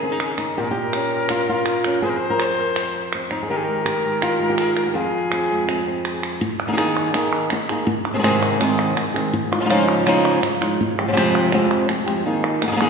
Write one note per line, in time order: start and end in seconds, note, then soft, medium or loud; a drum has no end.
0.00 0.55 C#3 medium
0.00 0.57 D#3 medium
0.00 0.57 G#3 medium
0.00 0.12 C4 soft
0.00 0.34 G#4 loud
0.00 0.57 G#4 loud
0.12 0.37 D#4 soft
0.20 clap medium
0.38 0.57 D#4 medium
0.38 clap medium
0.57 2.03 A#2 medium
0.57 0.63 G4 loud
0.57 1.99 A#4 loud
0.63 0.71 G#4 medium
0.71 1.30 G4 loud
0.93 1.85 C#4 soft
0.93 clap medium
1.29 1.48 F4 medium
1.29 clap medium
1.49 2.02 F4 medium
1.66 clap medium
1.84 2.01 C#4 soft
1.84 clap medium
2.02 3.49 F2 medium
2.02 2.27 G#4 loud
2.02 2.11 C5 loud
2.10 2.19 A#4 medium
2.17 3.22 C5 loud
2.30 2.41 A#4 medium
2.40 2.59 C5 medium
2.40 clap medium
2.59 2.78 A#4 medium
2.76 3.42 C5 loud
2.76 clap medium
3.13 3.48 C4 soft
3.13 clap medium
3.31 3.50 D#4 medium
3.31 clap medium
3.43 3.50 G#4 medium
3.48 4.96 D#3 medium
3.48 3.84 G4 loud
3.48 3.58 A#4 loud
3.57 3.65 G#4 medium
3.64 4.97 A#4 loud
3.68 4.04 G#3 soft
3.85 4.49 G4 medium
3.85 clap medium
4.05 4.40 G#3 soft
4.22 4.87 F4 medium
4.22 clap medium
4.40 4.77 G#3 medium
4.50 4.61 G4 medium
4.58 4.87 G#4 medium
4.58 clap medium
4.77 5.49 G#3 soft
4.77 clap medium
4.87 4.96 G4 medium
4.94 6.40 F2 medium
4.94 6.42 F4 medium
4.94 6.24 G#4 loud
5.32 5.67 C4 soft
5.32 clap medium
5.51 6.68 G#3 soft
5.68 5.85 C4 soft
5.68 clap medium
5.87 6.42 C4 medium
6.05 clap medium
6.23 clap medium
6.41 muted nylon-string guitar stroke medium
6.60 clap soft
6.67 6.71 D#3 medium
6.67 6.71 A#3 medium
6.67 6.71 D#4 medium
6.67 6.72 G#4 medium
6.72 6.76 D#3 medium
6.72 6.76 A#3 medium
6.72 6.77 D#4 medium
6.72 6.76 G#4 medium
6.77 7.12 D#3 medium
6.77 7.13 A#3 medium
6.77 7.14 D#4 medium
6.77 7.14 G#4 loud
6.77 clap medium
6.97 clap soft
7.13 7.50 D#3 medium
7.13 7.50 A#3 medium
7.13 7.51 D#4 medium
7.13 7.51 G#4 medium
7.13 clap medium
7.33 clap medium
7.50 muted nylon-string guitar stroke medium
7.50 clap medium
7.69 7.88 A#3 soft
7.69 7.88 D#4 medium
7.69 7.87 G#4 medium
7.69 clap medium
7.87 muted nylon-string guitar stroke medium
8.05 clap soft
8.14 8.17 C3 medium
8.14 8.18 D#3 medium
8.14 8.17 G#3 medium
8.14 8.18 C4 medium
8.14 8.18 G#4 medium
8.18 8.22 C3 medium
8.18 8.22 D#3 medium
8.18 8.23 G#3 medium
8.18 8.23 C4 medium
8.18 8.23 G#4 medium
8.23 8.59 G#2 medium
8.23 8.59 C3 medium
8.23 8.59 D#3 medium
8.23 8.60 G#3 medium
8.23 8.60 C4 loud
8.23 8.60 G#4 loud
8.23 clap medium
8.43 clap soft
8.60 8.95 G#2 medium
8.60 8.95 C3 medium
8.60 8.95 D#3 medium
8.60 8.96 G#3 medium
8.60 8.96 C4 medium
8.60 8.96 G#4 medium
8.60 clap medium
8.79 clap medium
8.96 muted nylon-string guitar stroke medium
8.96 clap medium
9.14 9.34 D#3 soft
9.14 9.33 G#3 medium
9.14 9.33 C4 medium
9.14 9.33 G#4 medium
9.14 clap medium
9.34 muted nylon-string guitar stroke medium
9.52 9.59 G#3 soft
9.52 9.60 D#4 medium
9.52 9.61 F4 medium
9.52 clap medium
9.60 9.63 F3 medium
9.60 9.64 G#3 medium
9.60 9.64 D#4 medium
9.60 9.65 F4 medium
9.64 9.68 F3 medium
9.64 9.69 G#3 medium
9.64 9.69 D#4 medium
9.64 9.69 F4 medium
9.69 10.05 C#3 medium
9.69 10.06 F3 loud
9.69 10.06 G#3 medium
9.69 10.06 D#4 medium
9.69 10.06 F4 medium
9.69 clap medium
10.06 10.41 C#3 medium
10.06 10.42 F3 medium
10.06 10.42 G#3 medium
10.06 10.42 D#4 loud
10.06 10.42 F4 medium
10.06 clap medium
10.25 clap soft
10.42 muted nylon-string guitar stroke medium
10.42 clap medium
10.61 10.80 G#3 soft
10.61 10.80 D#4 medium
10.61 10.79 F4 medium
10.61 clap medium
10.81 muted nylon-string guitar stroke medium
10.99 11.07 F3 medium
10.99 11.07 G#3 medium
10.99 11.07 C4 medium
10.99 11.07 G4 medium
11.08 11.11 C3 medium
11.08 11.11 F3 medium
11.08 11.12 G#3 medium
11.08 11.12 C4 medium
11.08 11.12 G4 medium
11.12 11.15 C3 medium
11.12 11.16 F3 medium
11.12 11.17 G#3 medium
11.12 11.16 C4 medium
11.12 11.17 G4 medium
11.16 11.52 F2 medium
11.16 11.52 C3 medium
11.16 11.53 F3 medium
11.16 11.53 G#3 medium
11.16 11.53 C4 loud
11.16 11.53 G4 loud
11.16 clap medium
11.35 clap soft
11.52 11.88 F2 medium
11.52 11.88 C3 medium
11.52 11.88 F3 medium
11.52 11.88 G#3 medium
11.52 11.89 C4 medium
11.52 11.89 G4 medium
11.52 clap medium
11.71 clap medium
11.89 muted nylon-string guitar stroke medium
11.89 clap medium
12.06 12.25 F3 medium
12.06 12.25 G#3 medium
12.06 12.25 C4 medium
12.06 12.25 G4 medium
12.06 clap medium
12.25 12.62 D#3 medium
12.25 12.62 A#3 medium
12.25 12.61 D#4 medium
12.25 12.60 G#4 medium
12.44 clap medium
12.62 12.66 A#3 soft
12.62 12.67 D#4 medium
12.62 12.67 G#4 medium
12.62 clap medium
12.67 12.71 D#3 medium
12.67 12.71 A#3 medium
12.67 12.71 D#4 medium
12.67 12.71 G#4 medium
12.72 12.75 D#3 medium
12.72 12.75 A#3 medium
12.72 12.76 D#4 medium
12.72 12.76 G#4 medium
12.76 12.80 D#3 medium
12.76 12.80 A#3 medium
12.76 12.80 D#4 medium
12.76 12.81 G#4 medium
12.81 12.90 D#3 medium
12.81 12.90 A#3 loud
12.81 12.90 D#4 loud
12.81 12.90 G#4 medium
12.81 clap medium